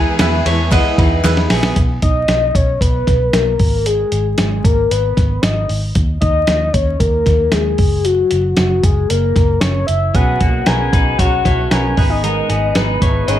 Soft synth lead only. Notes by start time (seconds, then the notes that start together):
Already playing: G#5
2.02 D#5
2.55 C#5
2.81 B4
3.33 A#4
3.86 G#4
4.38 G#4
4.64 A#4
4.90 B4
5.42 D#5
6.21 D#5
6.73 C#5
7.00 A#4
7.52 G#4
8.05 F#4
8.57 F#4
8.83 G#4
9.09 A#4
9.61 C#5
9.87 E5
10.14 F#5
10.66 G#5
11.18 F#5
11.71 G#5
12.09 D#5
12.75 B4
13.28 C#5